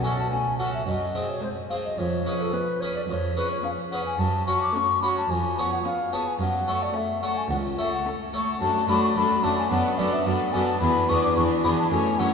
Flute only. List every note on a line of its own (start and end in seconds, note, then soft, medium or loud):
0.03 0.17 G#5 medium
0.19 0.31 A5 soft
0.31 0.58 G#5 medium
0.58 0.72 F#5 medium
0.74 0.86 E5 soft
0.87 1.32 D#5 medium
1.30 1.43 C#5 soft
1.43 1.49 C5 medium
1.70 1.76 F5 medium
1.85 2.00 D#5 soft
1.98 2.42 C#5 medium
2.41 2.55 A4 soft
2.54 2.82 B4 soft
2.81 2.95 C#5 medium
2.96 3.02 D5 soft
3.09 3.36 C#5 medium
3.37 3.50 B4 medium
3.52 3.58 C#5 soft
3.64 3.70 F5 medium
3.92 4.05 F#5 medium
4.06 4.21 G#5 medium
4.19 4.46 A5 medium
4.47 4.61 C#6 medium
4.62 4.76 D6 medium
4.74 5.02 C#6 medium
5.02 5.08 B5 medium
5.17 5.32 A5 medium
5.30 5.72 G#5 medium
5.73 5.78 F#5 medium
5.85 6.15 F5 medium
6.13 6.29 A5 medium
6.28 6.40 G#5 medium
6.41 6.84 F#5 medium
6.83 6.97 D5 medium
6.95 7.24 E5 medium
7.23 7.39 F#5 medium
7.38 7.50 G#5 medium
7.50 7.57 F#5 medium
7.79 7.92 E5 medium
7.93 8.06 F#5 medium
8.61 8.86 A5 medium
8.89 9.02 B5 medium
9.04 9.10 C#6 medium
9.16 9.45 B5 medium
9.44 9.57 A5 medium
9.59 9.71 G#5 medium
9.71 10.00 F#5 medium
9.98 10.15 D5 medium
10.13 10.27 E5 medium
10.26 10.54 F#5 medium
10.53 10.67 G#5 medium
10.68 10.80 A5 medium
10.81 11.11 B5 medium
11.09 11.23 C#6 medium
11.24 11.36 D6 medium
11.37 11.43 C#6 medium
11.65 11.71 B5 medium
11.79 11.91 A5 medium
11.91 12.20 G#5 medium
12.19 12.34 F#5 medium